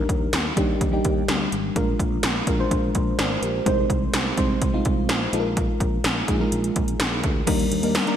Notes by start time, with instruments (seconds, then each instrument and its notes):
Already playing: fm electric piano G3 D4 D#4 A#4
0.09 fretless electric bass D#2, kick, closed hi-hat
0.33 fretless electric bass D#2, snare, closed hi-hat
0.56 fretless electric bass D#2, fm electric piano G3 D4 D#4 G4, kick, closed hi-hat
0.81 fretless electric bass D#2, kick, closed hi-hat
0.92 fm electric piano G3 D4 D#4 G4
1.05 fretless electric bass D#2, kick, closed hi-hat
1.28 fretless electric bass D2, snare, closed hi-hat
1.52 fretless electric bass G#1, closed hi-hat
1.75 fretless electric bass A#1, fm electric piano G#3 D4 F4 A#4, kick, closed hi-hat
1.99 fretless electric bass A#1, kick, closed hi-hat
2.23 fretless electric bass A#1, snare, closed hi-hat
2.47 fretless electric bass A#1, fm electric piano G#3 D4 F4 A#4, kick, closed hi-hat
2.59 fm electric piano G#3 D4 F4 C5
2.71 fretless electric bass A#1, kick, closed hi-hat
2.95 fretless electric bass A#1, kick, closed hi-hat
3.19 fretless electric bass G#1, fm electric piano A#4 D5, snare, closed hi-hat
3.42 fretless electric bass A#1, fm electric piano G4 A#4, closed hi-hat
3.66 fretless electric bass C2, fm electric piano G#3 C4 D#4 C5, kick, closed hi-hat
3.90 fretless electric bass C2, kick, closed hi-hat
4.13 fretless electric bass C2, snare, closed hi-hat
4.37 fretless electric bass C2, fm electric piano G#3 C4 D#4 C5, kick, closed hi-hat
4.62 fretless electric bass C2, kick, closed hi-hat
4.73 fm electric piano G#3 C4 D#4 F4
4.85 fretless electric bass C2, kick, closed hi-hat
5.09 fretless electric bass A#1, snare, closed hi-hat
5.33 fretless electric bass A#1, fm electric piano G#3 D#4 F4 A4, closed hi-hat
5.40 fm electric piano A#4
5.57 kick, closed hi-hat
5.80 fretless electric bass A#1, kick, closed hi-hat
6.04 fretless electric bass A#1, snare, closed hi-hat
6.28 fretless electric bass A#1, fm electric piano G#3 D#4 F4 G#4, kick, closed hi-hat
6.40 fm electric piano G#3 D#4 F4 A#4
6.52 fretless electric bass A#1, closed hi-hat
6.64 closed hi-hat
6.76 fretless electric bass A#1, kick, closed hi-hat
6.88 closed hi-hat
7.00 fretless electric bass A#1, snare, closed hi-hat
7.24 fretless electric bass D2, kick, closed hi-hat
7.47 fretless electric bass D#2, ambient pad D#3 A#3 G4 D5, fm electric piano G3 A#3 D4 D#4 A#4, kick, closed hi-hat, crash, cowbell
7.59 closed hi-hat
7.72 fretless electric bass D#2, closed hi-hat
7.83 fm electric piano G3 A#3 D4 D#4 A#4, closed hi-hat
7.95 snare, closed hi-hat, tambourine, cowbell
8.06 fm electric piano G3 A#3 D4 D#4 A#4, closed hi-hat